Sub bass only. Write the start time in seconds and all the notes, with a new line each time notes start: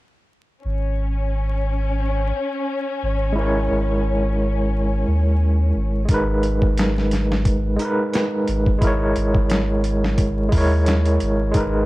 0.65 G#1
3.03 G#1
3.71 G#1
5.07 D#2
5.76 G#1
6.09 G#1
8.48 G#1
9.16 G#1
10.53 D#2
11.22 G#1
11.55 G#1